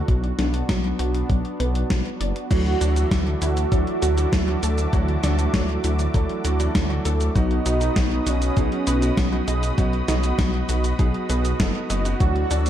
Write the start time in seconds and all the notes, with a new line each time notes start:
Already playing: F#4
0.08 B1 F#3 B3 D4, kick, closed hi-hat
0.24 closed hi-hat
0.39 B1 D4, snare, closed hi-hat
0.54 closed hi-hat
0.69 B1 F#3, kick, snare, closed hi-hat
0.84 closed hi-hat
0.99 B1 F#4, closed hi-hat
1.15 closed hi-hat
1.30 B1 F#3, kick, closed hi-hat
1.45 closed hi-hat
1.60 B1 B4, closed hi-hat
1.75 closed hi-hat
1.90 B1 F#3, kick, snare, closed hi-hat
2.06 closed hi-hat
2.20 F#1 D5, closed hi-hat
2.36 closed hi-hat
2.51 D2 E3 F#3 A3 D4 F#4 E5 A5 D6, kick, closed hi-hat, crash, shaker
2.66 closed hi-hat
2.81 D2 E3 F#3 A3 D4 F#4, closed hi-hat, shaker
2.96 E3 F#3 A3 D4 F#4, closed hi-hat, shaker
3.11 D2 E3 F#3 A3 D4 F#4, kick, snare, closed hi-hat, shaker
3.27 closed hi-hat
3.41 D2 E3 F#3 A3 D4 E4 F#4, closed hi-hat, shaker
3.57 closed hi-hat, shaker
3.72 D2 E3 F#3 A3 D4 A4, kick, closed hi-hat, shaker
3.87 closed hi-hat
4.02 D2 E3 F#3 A3 D4 F#4, closed hi-hat, shaker
4.17 E3 F#3 A3 D4 F#4, closed hi-hat, shaker
4.32 D2 F#3, kick, snare, closed hi-hat, shaker
4.48 E3 F#3 A3 D4 F#4, closed hi-hat
4.63 D2 E3 F#3 A3 D4 A4, closed hi-hat, shaker
4.78 closed hi-hat, shaker
4.93 D2 E3 F#3 A3 D4 F#4, kick, closed hi-hat, shaker
5.08 closed hi-hat
5.23 D2 E3 F#3 A3 D4 F#4, snare, closed hi-hat, shaker
5.39 E3 F#3 A3 D4 F#4, closed hi-hat, shaker
5.54 D2 E3 F#3 A3 D4 F#4, kick, snare, closed hi-hat, shaker
5.69 closed hi-hat
5.84 D2 E3 F#3 A3 D4 E4 F#4, closed hi-hat, shaker
5.99 closed hi-hat, shaker
6.14 D2 E3 F#3 A3 D4 A4, kick, closed hi-hat, shaker
6.29 closed hi-hat
6.45 D2 E3 F#3 A3 D4 F#4, closed hi-hat, shaker
6.60 E3 F#3 A3 D4 F#4, closed hi-hat, shaker
6.75 D2 F#3, kick, snare, closed hi-hat, shaker
6.90 E3 F#3 A3 D4 F#4, closed hi-hat
7.05 D2 E3 F#3 A3 D4 A4, closed hi-hat, shaker
7.21 closed hi-hat, shaker
7.35 B1 F#3 B3 D#4 F#4 D#5 B5 D#6, kick, closed hi-hat, shaker
7.51 closed hi-hat
7.66 B1 B3 D#4 F#4, closed hi-hat, shaker
7.81 B3 D#4 F#4, closed hi-hat, shaker
7.96 B1 F#3 B3 D#4 F#4, kick, snare, closed hi-hat, shaker
8.11 closed hi-hat
8.26 B1 B3 C#4 D#4 F#4, closed hi-hat, shaker
8.42 closed hi-hat, shaker
8.57 B1 F#3 B3 D#4 G#4, kick, closed hi-hat, shaker
8.72 closed hi-hat
8.87 B1 B3 D#4 F#4 B4, closed hi-hat, shaker
9.02 B3 D#4 F#4, closed hi-hat, shaker
9.17 B1 F#3, kick, snare, closed hi-hat, shaker
9.32 B3 D#4 F#4, closed hi-hat
9.47 B1 B3 D#4 G#4 D#5, closed hi-hat, shaker
9.63 closed hi-hat, shaker
9.78 B1 F#3 B3 D#4 F#4, kick, closed hi-hat, shaker
9.93 closed hi-hat
10.08 B1 B3 D#4 F#4, snare, closed hi-hat, shaker
10.23 B3 D#4 F#4, closed hi-hat, shaker
10.38 B1 F#3 B3 D#4 F#4, kick, snare, closed hi-hat, shaker
10.54 closed hi-hat
10.69 B1 B3 D#4 F#4, closed hi-hat, shaker
10.84 closed hi-hat, shaker
10.99 B1 F#3 B3 D#4 G#4, kick, closed hi-hat, shaker
11.14 closed hi-hat
11.29 B1 B3 D#4 G#4 B4, closed hi-hat, shaker
11.45 closed hi-hat, shaker
11.60 F#1 F#3 B3 D#4 A4, kick, snare, closed hi-hat, shaker
11.75 closed hi-hat
11.90 F#1 B3 D#4 F#4 D#5, closed hi-hat, shaker
12.05 B3 D#4 F#4, closed hi-hat, shaker
12.20 D2 E3 F#3 A3 D4 F#4 D5 A5 E6, kick, closed hi-hat, shaker
12.36 closed hi-hat
12.51 D2 E3 F#3 A3 D4 F#4, closed hi-hat, shaker
12.66 E3 F#3 A3 D4 F#4, closed hi-hat, shaker